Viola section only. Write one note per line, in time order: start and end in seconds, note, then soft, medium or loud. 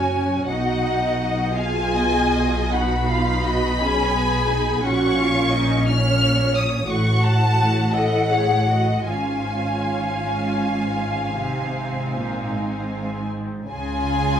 0.00 0.10 C#4 soft
0.00 1.52 F#4 soft
0.12 0.47 C#4 soft
0.48 1.56 D#4 soft
1.55 2.70 F4 soft
1.55 2.72 G#4 soft
2.73 3.80 D#4 soft
2.73 3.09 F#4 medium
3.10 3.45 F4 medium
3.45 3.80 F#4 medium
3.81 4.15 C#4 medium
3.81 4.84 G#4 medium
4.15 4.49 B3 medium
4.49 4.83 D#4 soft
4.83 5.85 C#4 medium
4.83 5.17 F#4 medium
5.19 5.53 F4 medium
5.54 5.87 D#4 medium
5.88 6.89 C#4 medium
6.89 7.91 F#4 soft
7.95 8.31 A4 soft
8.31 8.68 G#4 soft
8.68 9.06 F#4 soft
9.05 11.33 C#4 soft
9.05 11.33 F4 soft
11.37 13.46 C4 soft
11.37 13.49 D#4 soft